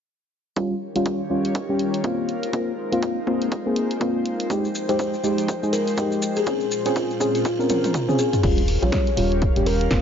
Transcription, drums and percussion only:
0.56 kick, closed hi-hat
0.96 closed hi-hat
1.06 kick, closed hi-hat
1.45 closed hi-hat
1.55 kick, closed hi-hat
1.79 closed hi-hat
1.94 closed hi-hat
2.04 kick, closed hi-hat
2.29 closed hi-hat
2.43 closed hi-hat
2.53 kick, closed hi-hat
2.92 closed hi-hat
3.03 kick, closed hi-hat
3.27 kick
3.42 closed hi-hat
3.52 kick, closed hi-hat
3.76 closed hi-hat
3.91 closed hi-hat
4.01 kick, closed hi-hat
4.26 closed hi-hat
4.40 closed hi-hat
4.50 kick, closed hi-hat, maracas
4.65 maracas
4.75 maracas
4.89 closed hi-hat, maracas
4.99 kick, closed hi-hat, maracas
5.14 maracas
5.24 maracas
5.38 closed hi-hat, maracas
5.48 kick, closed hi-hat, maracas
5.63 maracas
5.73 closed hi-hat, maracas
5.87 closed hi-hat, maracas
5.97 kick, closed hi-hat, maracas
6.12 maracas
6.22 closed hi-hat, maracas
6.36 closed hi-hat, maracas
6.46 kick, closed hi-hat, maracas
6.60 maracas
6.71 maracas
6.85 closed hi-hat, maracas
6.96 kick, closed hi-hat, maracas
7.10 maracas
7.21 kick, maracas
7.35 closed hi-hat, maracas
7.45 kick, closed hi-hat, maracas
7.60 maracas
7.69 closed hi-hat, high tom, maracas
7.84 closed hi-hat, high tom, maracas
7.94 kick, closed hi-hat, mid tom, maracas
8.09 mid tom, maracas
8.19 closed hi-hat, maracas
8.33 closed hi-hat, mid tom, maracas
8.43 kick, closed hi-hat, crash
8.58 closed hi-hat
8.68 open hi-hat
8.83 closed hi-hat
8.92 kick, snare, closed hi-hat
9.07 closed hi-hat
9.17 open hi-hat
9.32 closed hi-hat
9.42 kick, closed hi-hat
9.56 closed hi-hat
9.66 open hi-hat
9.81 closed hi-hat
9.91 kick, snare, closed hi-hat

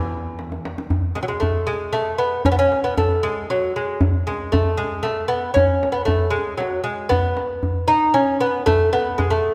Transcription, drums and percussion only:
0.39 tombak tek
0.52 tombak ka
0.65 tombak tek
0.78 tombak ka
0.90 tombak dum
1.16 tombak tek
1.42 tombak dum
1.94 tombak tek
2.45 tombak dum
2.72 tombak tek
2.98 tombak dum
3.50 tombak tek
4.01 tombak dum
4.28 tombak tek
4.53 tombak dum
5.05 tombak tek
5.56 tombak dum
5.83 tombak tek
6.08 tombak dum
6.35 tombak ka
6.60 tombak tek
6.86 tombak ka
7.12 tombak dum
7.37 tombak tek
7.63 tombak dum
8.15 tombak tek
8.67 tombak dum
8.93 tombak tek
9.19 tombak dum

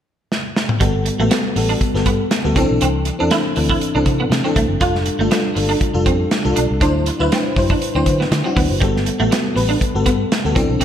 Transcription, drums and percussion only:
0.32 snare
0.56 snare
0.69 mid tom
0.81 kick, closed hi-hat
1.06 closed hi-hat
1.31 snare, closed hi-hat
1.56 open hi-hat
1.81 kick, closed hi-hat
1.96 snare
2.06 kick, closed hi-hat
2.31 snare, closed hi-hat
2.56 kick, closed hi-hat
2.81 closed hi-hat
3.05 closed hi-hat
3.31 snare, closed hi-hat
3.56 open hi-hat
3.69 kick
3.81 closed hi-hat
4.06 kick, closed hi-hat
4.32 snare, closed hi-hat
4.56 kick, closed hi-hat
4.81 kick, closed hi-hat
4.95 snare
5.06 closed hi-hat
5.31 snare, closed hi-hat
5.56 open hi-hat
5.81 kick, closed hi-hat
6.06 kick, closed hi-hat
6.31 snare, closed hi-hat
6.56 closed hi-hat
6.81 kick, closed hi-hat
7.06 closed hi-hat
7.32 snare, closed hi-hat
7.56 kick, open hi-hat
7.70 kick
7.82 closed hi-hat
8.06 kick, closed hi-hat
8.21 snare
8.32 snare, closed hi-hat
8.57 kick, open hi-hat
8.82 kick, closed hi-hat
8.97 snare
9.06 closed hi-hat
9.32 snare, closed hi-hat
9.57 open hi-hat
9.81 kick, closed hi-hat
10.06 kick, closed hi-hat
10.32 snare, closed hi-hat
10.56 kick, closed hi-hat
10.81 closed hi-hat

